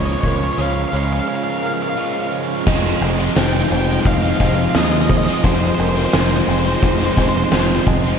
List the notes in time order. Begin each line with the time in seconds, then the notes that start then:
Already playing: C#2 C#3 F3 G#3 C#4 F4 A#4 C6
0.06 C#5
0.13 C#5
0.21 C#2 G#3 A#4 C#5, kick, closed hi-hat
0.28 C#5
0.36 C#5
0.44 C#5
0.53 C#5
0.58 C#2 C#4 C#5 F5, closed hi-hat
0.66 F5
0.73 F5
0.82 F5
0.89 C#4 F5
0.93 C#2 C#3 F3 G#3 C#5 F5, closed hi-hat
1.04 F5
1.13 F5
1.20 F5
1.28 C#4 F5
1.35 F5
1.44 F5
1.50 F5
1.58 F5
1.62 A#4 F5
1.66 F5
1.74 F5
1.82 F5
1.90 F5
1.96 C#3 F3 G#3 C#4 F4 F5
2.05 F5
2.13 F5
2.21 F5
2.32 G#3 F5
2.66 F1 F2 C3 F3 G#3 C4 F4 G#4 D#5, kick, crash
2.84 muted overdriven electric guitar stroke
3.01 F1 C3 F3 G#3 C4, open hi-hat
3.18 F3 G#3 C4
3.35 F1 F2 C3 F3 G#3 C4 D#4 C5 G5, snare, open hi-hat
3.46 G5
3.53 F3 G#3 C4 G5
3.62 G5
3.69 F1 C3 F3 G#3 C4 C5 G5, muted distorted electric guitar stroke, open hi-hat
3.78 G5
3.85 C4 G5
3.90 F3 G#3 G5
4.00 G5
4.05 F1 D#4 D#5 F5, kick, open hi-hat
4.13 F5
4.23 F3 G#3 C4 F5
4.30 F5
4.37 F1 C3 C5 D#5 F5, kick, open hi-hat
4.41 F3 G#3 C4
4.46 F5
4.55 C4 F5, muted overdriven electric guitar stroke
4.59 F3 G#3 F5
4.70 F5
4.75 D#2 F2 C3 F3 G#3 C4 F4 D#5, snare, open hi-hat
4.84 D#5
4.92 F3 G#3 C4 D#5
5.01 D#5
5.09 G#3 C5 D#5, kick, open hi-hat
5.17 D#5
5.25 G#3 C4 D#5
5.30 F3 D#5
5.43 F1 F2 C3 F3 G#3 C4 C5, kick, open hi-hat
5.52 C5
5.59 C5, muted overdriven electric guitar stroke
5.67 C5
5.75 C3 C5
5.79 F1 F3 G#3 C4 A#4 C5, open hi-hat
5.89 C5
5.95 F3 G#3 C4 C5
6.05 C5
6.13 F1 F2 C3 F3 G#3 C4 D#4 C5, snare, open hi-hat
6.21 C5
6.29 F3 G#3 C4 C5
6.37 C5
6.45 F1 C3 F3 G#3 C5, muted distorted electric guitar stroke, open hi-hat
6.49 G#3 C4 C5
6.59 C5
6.65 F3 G#3 C4 C5
6.75 C5
6.83 F1 D#4 C5, kick, open hi-hat
6.91 C5
6.98 G#3 C4 C5
7.03 F3 C5
7.13 C3 C5
7.17 F1 F3 G#3 C4 C5 D#5, kick, open hi-hat
7.22 C5
7.29 C5
7.34 F3 G#3 C4 C5, muted overdriven electric guitar stroke
7.44 C5
7.52 F1 F2 C3 F3 G#3 C4 F4 C5, snare, open hi-hat
7.60 C5
7.67 G#3 C4 C5
7.72 F3 C5
7.86 F1 G#3 D#5, kick, open hi-hat
8.04 F3 G#3 C4